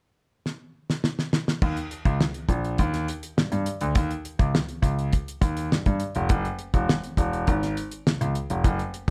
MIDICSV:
0, 0, Header, 1, 3, 480
1, 0, Start_track
1, 0, Tempo, 585366
1, 1330, Time_signature, 4, 2, 24, 8
1, 7463, End_track
2, 0, Start_track
2, 0, Title_t, "Grand piano"
2, 0, Program_c, 0, 0
2, 1331, Note_on_c, 0, 39, 93
2, 1438, Note_off_c, 0, 39, 0
2, 1686, Note_on_c, 0, 37, 93
2, 1795, Note_off_c, 0, 37, 0
2, 2039, Note_on_c, 0, 34, 81
2, 2259, Note_off_c, 0, 34, 0
2, 2290, Note_on_c, 0, 39, 85
2, 2505, Note_off_c, 0, 39, 0
2, 2765, Note_on_c, 0, 43, 28
2, 2815, Note_off_c, 0, 43, 0
2, 2885, Note_on_c, 0, 43, 75
2, 2995, Note_off_c, 0, 43, 0
2, 3126, Note_on_c, 0, 38, 84
2, 3236, Note_off_c, 0, 38, 0
2, 3243, Note_on_c, 0, 39, 91
2, 3354, Note_off_c, 0, 39, 0
2, 3601, Note_on_c, 0, 37, 88
2, 3713, Note_off_c, 0, 37, 0
2, 3956, Note_on_c, 0, 37, 81
2, 4177, Note_off_c, 0, 37, 0
2, 4440, Note_on_c, 0, 39, 75
2, 4659, Note_off_c, 0, 39, 0
2, 4691, Note_on_c, 0, 43, 27
2, 4739, Note_off_c, 0, 43, 0
2, 4807, Note_on_c, 0, 43, 78
2, 4916, Note_off_c, 0, 43, 0
2, 5048, Note_on_c, 0, 29, 91
2, 5156, Note_off_c, 0, 29, 0
2, 5166, Note_on_c, 0, 30, 97
2, 5275, Note_off_c, 0, 30, 0
2, 5525, Note_on_c, 0, 28, 95
2, 5634, Note_off_c, 0, 28, 0
2, 5884, Note_on_c, 0, 28, 88
2, 6101, Note_off_c, 0, 28, 0
2, 6133, Note_on_c, 0, 32, 88
2, 6345, Note_off_c, 0, 32, 0
2, 6616, Note_on_c, 0, 37, 28
2, 6662, Note_off_c, 0, 37, 0
2, 6732, Note_on_c, 0, 37, 79
2, 6837, Note_off_c, 0, 37, 0
2, 6972, Note_on_c, 0, 29, 80
2, 7077, Note_off_c, 0, 29, 0
2, 7089, Note_on_c, 0, 30, 89
2, 7195, Note_off_c, 0, 30, 0
2, 7463, End_track
3, 0, Start_track
3, 0, Title_t, "Drums"
3, 375, Note_on_c, 9, 38, 48
3, 457, Note_off_c, 9, 38, 0
3, 735, Note_on_c, 9, 38, 67
3, 817, Note_off_c, 9, 38, 0
3, 851, Note_on_c, 9, 38, 78
3, 933, Note_off_c, 9, 38, 0
3, 973, Note_on_c, 9, 38, 61
3, 1055, Note_off_c, 9, 38, 0
3, 1090, Note_on_c, 9, 38, 93
3, 1172, Note_off_c, 9, 38, 0
3, 1214, Note_on_c, 9, 38, 85
3, 1296, Note_off_c, 9, 38, 0
3, 1327, Note_on_c, 9, 49, 85
3, 1328, Note_on_c, 9, 36, 113
3, 1409, Note_off_c, 9, 49, 0
3, 1410, Note_off_c, 9, 36, 0
3, 1449, Note_on_c, 9, 42, 54
3, 1531, Note_off_c, 9, 42, 0
3, 1567, Note_on_c, 9, 42, 75
3, 1649, Note_off_c, 9, 42, 0
3, 1684, Note_on_c, 9, 36, 87
3, 1685, Note_on_c, 9, 42, 41
3, 1766, Note_off_c, 9, 36, 0
3, 1767, Note_off_c, 9, 42, 0
3, 1809, Note_on_c, 9, 38, 115
3, 1891, Note_off_c, 9, 38, 0
3, 1921, Note_on_c, 9, 42, 47
3, 2003, Note_off_c, 9, 42, 0
3, 2039, Note_on_c, 9, 36, 71
3, 2043, Note_on_c, 9, 42, 58
3, 2121, Note_off_c, 9, 36, 0
3, 2125, Note_off_c, 9, 42, 0
3, 2169, Note_on_c, 9, 42, 41
3, 2251, Note_off_c, 9, 42, 0
3, 2283, Note_on_c, 9, 42, 68
3, 2288, Note_on_c, 9, 36, 70
3, 2365, Note_off_c, 9, 42, 0
3, 2370, Note_off_c, 9, 36, 0
3, 2408, Note_on_c, 9, 38, 32
3, 2408, Note_on_c, 9, 42, 48
3, 2490, Note_off_c, 9, 38, 0
3, 2490, Note_off_c, 9, 42, 0
3, 2528, Note_on_c, 9, 42, 81
3, 2610, Note_off_c, 9, 42, 0
3, 2648, Note_on_c, 9, 42, 61
3, 2730, Note_off_c, 9, 42, 0
3, 2771, Note_on_c, 9, 38, 101
3, 2853, Note_off_c, 9, 38, 0
3, 2885, Note_on_c, 9, 42, 45
3, 2967, Note_off_c, 9, 42, 0
3, 3002, Note_on_c, 9, 42, 65
3, 3084, Note_off_c, 9, 42, 0
3, 3121, Note_on_c, 9, 42, 52
3, 3203, Note_off_c, 9, 42, 0
3, 3240, Note_on_c, 9, 42, 88
3, 3244, Note_on_c, 9, 36, 122
3, 3322, Note_off_c, 9, 42, 0
3, 3326, Note_off_c, 9, 36, 0
3, 3367, Note_on_c, 9, 42, 49
3, 3449, Note_off_c, 9, 42, 0
3, 3485, Note_on_c, 9, 42, 63
3, 3567, Note_off_c, 9, 42, 0
3, 3603, Note_on_c, 9, 36, 94
3, 3605, Note_on_c, 9, 42, 45
3, 3685, Note_off_c, 9, 36, 0
3, 3687, Note_off_c, 9, 42, 0
3, 3729, Note_on_c, 9, 38, 112
3, 3811, Note_off_c, 9, 38, 0
3, 3843, Note_on_c, 9, 42, 47
3, 3925, Note_off_c, 9, 42, 0
3, 3958, Note_on_c, 9, 36, 70
3, 3965, Note_on_c, 9, 42, 59
3, 4040, Note_off_c, 9, 36, 0
3, 4047, Note_off_c, 9, 42, 0
3, 4089, Note_on_c, 9, 42, 42
3, 4171, Note_off_c, 9, 42, 0
3, 4203, Note_on_c, 9, 42, 71
3, 4208, Note_on_c, 9, 36, 73
3, 4285, Note_off_c, 9, 42, 0
3, 4290, Note_off_c, 9, 36, 0
3, 4331, Note_on_c, 9, 42, 52
3, 4413, Note_off_c, 9, 42, 0
3, 4442, Note_on_c, 9, 36, 99
3, 4445, Note_on_c, 9, 42, 88
3, 4524, Note_off_c, 9, 36, 0
3, 4527, Note_off_c, 9, 42, 0
3, 4565, Note_on_c, 9, 42, 65
3, 4647, Note_off_c, 9, 42, 0
3, 4692, Note_on_c, 9, 38, 100
3, 4774, Note_off_c, 9, 38, 0
3, 4804, Note_on_c, 9, 42, 40
3, 4807, Note_on_c, 9, 36, 80
3, 4886, Note_off_c, 9, 42, 0
3, 4889, Note_off_c, 9, 36, 0
3, 4917, Note_on_c, 9, 42, 59
3, 4999, Note_off_c, 9, 42, 0
3, 5041, Note_on_c, 9, 42, 44
3, 5123, Note_off_c, 9, 42, 0
3, 5159, Note_on_c, 9, 42, 86
3, 5165, Note_on_c, 9, 36, 115
3, 5241, Note_off_c, 9, 42, 0
3, 5247, Note_off_c, 9, 36, 0
3, 5288, Note_on_c, 9, 42, 49
3, 5370, Note_off_c, 9, 42, 0
3, 5401, Note_on_c, 9, 42, 71
3, 5483, Note_off_c, 9, 42, 0
3, 5525, Note_on_c, 9, 36, 80
3, 5525, Note_on_c, 9, 42, 46
3, 5607, Note_off_c, 9, 36, 0
3, 5607, Note_off_c, 9, 42, 0
3, 5653, Note_on_c, 9, 38, 123
3, 5735, Note_off_c, 9, 38, 0
3, 5769, Note_on_c, 9, 42, 44
3, 5851, Note_off_c, 9, 42, 0
3, 5882, Note_on_c, 9, 36, 68
3, 5888, Note_on_c, 9, 42, 63
3, 5964, Note_off_c, 9, 36, 0
3, 5970, Note_off_c, 9, 42, 0
3, 6013, Note_on_c, 9, 42, 35
3, 6095, Note_off_c, 9, 42, 0
3, 6127, Note_on_c, 9, 42, 69
3, 6132, Note_on_c, 9, 36, 70
3, 6209, Note_off_c, 9, 42, 0
3, 6214, Note_off_c, 9, 36, 0
3, 6257, Note_on_c, 9, 38, 35
3, 6257, Note_on_c, 9, 42, 51
3, 6339, Note_off_c, 9, 38, 0
3, 6339, Note_off_c, 9, 42, 0
3, 6372, Note_on_c, 9, 42, 79
3, 6454, Note_off_c, 9, 42, 0
3, 6490, Note_on_c, 9, 42, 62
3, 6572, Note_off_c, 9, 42, 0
3, 6616, Note_on_c, 9, 38, 98
3, 6698, Note_off_c, 9, 38, 0
3, 6734, Note_on_c, 9, 42, 49
3, 6816, Note_off_c, 9, 42, 0
3, 6849, Note_on_c, 9, 42, 64
3, 6931, Note_off_c, 9, 42, 0
3, 6970, Note_on_c, 9, 42, 52
3, 7052, Note_off_c, 9, 42, 0
3, 7088, Note_on_c, 9, 36, 113
3, 7090, Note_on_c, 9, 42, 90
3, 7170, Note_off_c, 9, 36, 0
3, 7172, Note_off_c, 9, 42, 0
3, 7210, Note_on_c, 9, 42, 44
3, 7292, Note_off_c, 9, 42, 0
3, 7330, Note_on_c, 9, 42, 72
3, 7412, Note_off_c, 9, 42, 0
3, 7463, End_track
0, 0, End_of_file